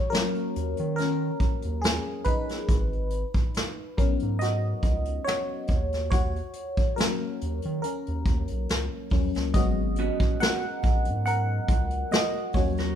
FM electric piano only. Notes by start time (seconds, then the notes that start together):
Already playing: F#4 C#5
0.10 F#3 A#3 C#4 A#4
0.96 C#4 A#4
1.82 C#4 G#4
2.25 D#4 B4
3.97 F#3 B3 C#4 A#4
4.39 F#4 D#5
5.25 F#4 C#5
6.10 F#4 C#5
6.96 F#3 A#3 C#4 A#4
7.82 C#4 A#4
9.12 F#3 A#3 C#4
9.54 F#3 G#3 B3 C#4 F#4 D#5
10.40 A#4 F#5
11.26 A#4 F#5
12.12 F#4 D#5
12.54 F#3 A#3 C#4 F#4 C#5